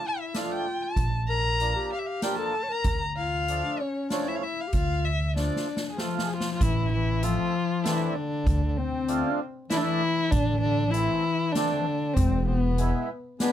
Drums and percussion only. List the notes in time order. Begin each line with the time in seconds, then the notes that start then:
0.34 snare, closed hi-hat
0.96 kick, closed hi-hat
1.60 closed hi-hat
2.22 snare, closed hi-hat
2.84 kick, closed hi-hat
3.48 closed hi-hat
4.10 snare, closed hi-hat
4.73 kick, closed hi-hat
5.36 snare
5.56 snare
5.77 snare
5.98 snare
6.19 snare
6.40 snare
6.61 kick, closed hi-hat
7.23 closed hi-hat
7.85 snare, closed hi-hat
8.47 kick, closed hi-hat
9.08 closed hi-hat
9.70 snare, closed hi-hat
10.32 kick, closed hi-hat
10.94 closed hi-hat
11.55 snare, closed hi-hat
12.17 kick, closed hi-hat
12.78 closed hi-hat
13.40 snare, closed hi-hat